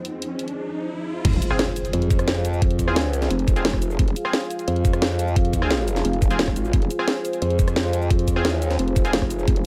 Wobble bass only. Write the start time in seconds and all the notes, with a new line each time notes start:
1.25 F1
1.93 F2
2.91 D#2
3.13 C#2
3.30 F1
3.99 F1
4.68 F2
6.05 F1
6.39 D#1
6.56 G#1
6.73 F1
7.42 F2
8.38 E2
8.65 D#2
8.79 F1
9.48 F1